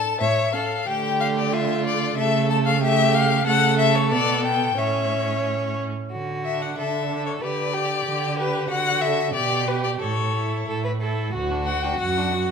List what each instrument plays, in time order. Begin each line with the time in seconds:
Already playing: viola D4, violin A4 A5
0.20 cello A2, violin C#5 E5
0.53 viola C#4, violin A4 F5
0.87 cello D3, viola A3, violin G4 G5
1.20 violin F5
1.38 violin D5
1.53 violin F4 E5
1.87 violin D5
2.17 cello C#3, viola A3, violin A4 E5
2.50 violin A5
2.66 violin F5
2.82 viola A3, violin G4 E5
3.14 violin F5
3.46 cello C#3, viola A3, violin A4 F#5
3.79 violin E5
3.95 violin C#5
4.11 cello B2, viola B3, violin D5
4.45 violin G5
4.77 cello A2, viola C#4, violin C#5 E5
6.12 cello D3, violin F#4
6.45 viola D4, violin E5
6.62 violin F#5
6.78 cello D3, violin A4 E5
7.10 viola D4
7.26 violin C#5
7.41 cello D3, viola G4, violin B4 D5
7.73 violin G4, viola G4
8.06 cello D3
8.38 viola G4, violin B4
8.69 cello D3, violin F#4 F#5
9.01 viola A4, violin E5
9.34 cello B2, violin G4 D5, viola G4
9.68 viola G4, violin B4
9.84 violin D5
10.00 cello A2, violin A4 C#5
10.34 viola E4
10.68 cello A2, violin A4
10.84 violin B4
11.01 viola E4, violin A4
11.34 cello D2, violin F#4, viola F#4
11.52 viola D4
11.66 viola F#4, violin F#5
11.83 viola D4, violin G5
12.00 cello F#2, viola F#4, violin F#5
12.18 viola D4
12.34 viola F#4